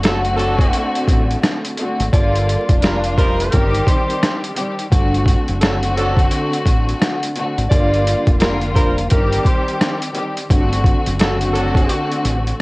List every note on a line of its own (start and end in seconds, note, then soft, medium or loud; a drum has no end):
0.00 0.70 F#1 medium
0.00 closed hi-hat loud
0.04 1.68 D3 loud
0.04 0.20 F#3 medium
0.04 1.68 A3 loud
0.04 1.68 C4 loud
0.04 0.20 D4 medium
0.04 1.69 F#4 loud
0.04 0.20 A4 loud
0.04 cross-stick medium
0.04 snare loud
0.25 closed hi-hat soft
0.36 0.85 F#3 loud
0.36 0.85 D4 loud
0.36 0.85 A4 loud
0.36 closed hi-hat medium
0.59 kick loud
0.59 closed hi-hat medium
0.73 closed hi-hat loud
0.95 closed hi-hat medium
1.08 1.34 A1 medium
1.08 kick loud
1.08 closed hi-hat medium
1.31 closed hi-hat medium
1.43 cross-stick medium
1.43 snare loud
1.43 closed hi-hat medium
1.65 closed hi-hat medium
1.77 2.10 D3 medium
1.77 2.11 A3 medium
1.77 2.12 C4 medium
1.77 2.12 F#4 medium
1.77 closed hi-hat medium
2.00 2.10 G#1 medium
2.00 closed hi-hat medium
2.11 2.55 G1 loud
2.11 2.77 D3 loud
2.11 2.78 G3 medium
2.11 2.78 A#3 loud
2.11 2.79 F4 loud
2.11 2.79 D5 medium
2.11 kick loud
2.11 closed hi-hat loud
2.35 closed hi-hat soft
2.49 closed hi-hat medium
2.69 3.48 F1 medium
2.69 kick loud
2.69 closed hi-hat medium
2.80 3.52 G3 medium
2.80 2.99 G3 medium
2.80 3.52 A#3 medium
2.80 3.51 D4 loud
2.80 3.52 F4 loud
2.80 2.99 F4 medium
2.80 2.99 A#4 medium
2.80 cross-stick loud
2.80 snare loud
2.80 closed hi-hat loud
3.04 closed hi-hat soft
3.18 3.66 G3 loud
3.18 3.66 D#4 loud
3.18 3.66 A#4 loud
3.18 3.37 C5 medium
3.18 kick medium
3.18 closed hi-hat medium
3.40 closed hi-hat medium
3.51 3.79 G1 loud
3.51 4.50 D#3 loud
3.51 4.51 G3 loud
3.51 4.51 C4 loud
3.51 4.51 G4 loud
3.51 3.83 A#4 medium
3.51 kick loud
3.51 closed hi-hat loud
3.74 closed hi-hat medium
3.87 4.40 C5 medium
3.87 kick loud
3.87 closed hi-hat medium
4.10 closed hi-hat medium
4.23 cross-stick loud
4.23 snare loud
4.23 closed hi-hat medium
4.44 closed hi-hat medium
4.55 4.89 D#3 medium
4.55 4.89 G3 medium
4.55 4.90 C4 medium
4.55 4.90 G4 medium
4.55 closed hi-hat medium
4.79 closed hi-hat medium
4.91 5.34 G1 loud
4.91 5.57 D3 loud
4.91 5.57 A3 medium
4.91 5.57 C4 medium
4.91 5.58 F#4 loud
4.91 kick loud
4.91 closed hi-hat loud
5.14 closed hi-hat medium
5.26 kick loud
5.26 closed hi-hat medium
5.48 6.28 F#1 medium
5.48 closed hi-hat medium
5.61 7.26 D3 loud
5.61 5.77 F#3 medium
5.61 7.26 A3 loud
5.61 7.26 C4 loud
5.61 5.77 D4 medium
5.61 7.27 F#4 loud
5.61 5.77 A4 loud
5.61 cross-stick medium
5.61 snare loud
5.61 closed hi-hat medium
5.83 closed hi-hat soft
5.97 6.19 F#3 medium
5.97 6.19 D4 loud
5.97 6.19 A4 loud
5.97 closed hi-hat medium
6.17 kick loud
6.17 closed hi-hat medium
6.31 closed hi-hat loud
6.53 closed hi-hat medium
6.66 6.92 A1 medium
6.66 kick medium
6.66 closed hi-hat medium
6.89 closed hi-hat medium
7.02 cross-stick loud
7.02 snare loud
7.02 closed hi-hat medium
7.23 closed hi-hat medium
7.36 7.68 D3 medium
7.36 7.69 A3 medium
7.36 7.70 C4 medium
7.36 7.70 F#4 medium
7.36 closed hi-hat medium
7.58 7.68 G#1 loud
7.58 closed hi-hat medium
7.69 8.13 G1 loud
7.69 8.35 D3 loud
7.69 8.36 G3 medium
7.69 8.36 A#3 loud
7.69 8.37 F4 loud
7.69 8.36 D5 loud
7.69 kick loud
7.69 closed hi-hat loud
7.94 closed hi-hat medium
8.07 closed hi-hat medium
8.27 9.07 F1 medium
8.27 kick loud
8.27 closed hi-hat medium
8.38 9.09 D3 loud
8.38 9.09 G3 medium
8.38 8.57 G3 medium
8.38 9.10 A#3 medium
8.38 9.10 F4 loud
8.38 8.57 F4 medium
8.38 8.57 A#4 loud
8.38 closed hi-hat loud
8.42 cross-stick medium
8.42 snare loud
8.62 closed hi-hat soft
8.75 8.98 G3 medium
8.75 8.98 F4 loud
8.75 8.98 A#4 loud
8.75 8.94 C5 medium
8.75 kick medium
8.75 closed hi-hat medium
8.98 closed hi-hat medium
9.10 9.38 G1 loud
9.10 10.08 D#3 loud
9.10 10.09 G3 loud
9.10 10.09 C4 loud
9.10 10.09 G4 loud
9.10 9.43 A#4 medium
9.10 kick loud
9.10 closed hi-hat loud
9.32 closed hi-hat medium
9.45 9.99 C5 medium
9.45 kick loud
9.45 closed hi-hat medium
9.68 closed hi-hat medium
9.81 cross-stick loud
9.81 snare loud
9.81 closed hi-hat medium
10.02 closed hi-hat medium
10.13 10.47 D#3 medium
10.13 10.47 G3 medium
10.13 10.48 C4 medium
10.13 10.48 G4 medium
10.13 closed hi-hat medium
10.37 closed hi-hat medium
10.49 10.93 G1 loud
10.49 11.15 D3 loud
10.49 11.15 A3 medium
10.49 11.16 C4 medium
10.49 11.16 F#4 loud
10.49 kick loud
10.49 closed hi-hat loud
10.73 closed hi-hat medium
10.84 kick loud
10.84 closed hi-hat medium
11.06 11.86 F#1 medium
11.06 closed hi-hat medium
11.19 12.62 D3 loud
11.19 11.37 F#3 medium
11.19 12.62 A3 loud
11.19 12.62 C4 loud
11.19 11.37 D4 medium
11.19 12.62 F#4 loud
11.19 11.37 A4 loud
11.19 cross-stick medium
11.19 snare loud
11.19 closed hi-hat loud
11.41 closed hi-hat soft
11.53 12.02 F#3 loud
11.53 12.02 D4 loud
11.53 12.02 A4 loud
11.53 closed hi-hat medium
11.75 kick loud
11.75 closed hi-hat medium
11.89 closed hi-hat loud
12.12 closed hi-hat medium
12.25 12.51 A1 loud
12.25 closed hi-hat medium
12.47 closed hi-hat medium